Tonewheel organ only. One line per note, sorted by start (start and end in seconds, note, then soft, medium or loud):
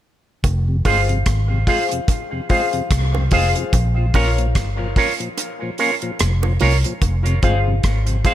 0.68 0.77 F2 medium
0.68 0.77 C3 medium
0.85 0.98 G#3 medium
0.85 0.98 C4 medium
0.85 0.98 F4 medium
1.09 1.18 F2 medium
1.09 1.18 C3 medium
1.50 1.59 F2 medium
1.50 1.59 C3 medium
1.67 1.79 G#3 medium
1.67 1.80 C4 medium
1.67 1.80 F4 medium
1.92 2.00 F2 medium
1.92 2.00 C3 medium
2.32 2.41 F2 medium
2.32 2.41 C3 medium
2.50 2.62 G#3 medium
2.50 2.62 C4 medium
2.50 2.62 F4 medium
2.73 2.82 F2 medium
2.73 2.82 C3 medium
3.15 3.24 F2 medium
3.15 3.24 C3 medium
3.32 3.44 G#3 medium
3.32 3.44 C4 medium
3.32 3.44 F4 medium
3.56 3.65 F2 medium
3.56 3.65 C3 medium
3.97 4.06 A#2 medium
3.97 4.06 F3 medium
4.14 4.26 A#3 medium
4.14 4.26 C#4 medium
4.14 4.27 F4 medium
4.38 4.47 A#2 medium
4.38 4.47 F3 medium
4.79 4.88 A#2 medium
4.79 4.88 F3 medium
4.96 5.08 A#3 medium
4.96 5.09 C#4 medium
4.96 5.09 F4 medium
5.20 5.29 A#2 medium
5.20 5.29 F3 medium
5.62 5.70 A#2 medium
5.62 5.70 F3 medium
5.79 5.91 A#3 medium
5.79 5.91 C#4 medium
5.79 5.91 F4 medium
6.03 6.11 A#2 medium
6.03 6.11 F3 medium
6.44 6.53 A#2 medium
6.44 6.53 F3 medium
6.61 6.73 A#3 medium
6.61 6.73 C#4 medium
6.61 6.73 F4 medium
6.85 6.94 A#2 medium
6.85 6.94 F3 medium
7.26 7.35 F2 medium
7.26 7.35 C3 medium
7.43 7.55 G#3 medium
7.43 7.55 C4 medium
7.43 7.55 F4 medium
7.67 7.76 F2 medium
7.67 7.76 C3 medium
8.08 8.17 F2 medium
8.08 8.17 C3 medium
8.25 8.34 G#3 medium
8.25 8.34 C4 medium
8.25 8.34 F4 medium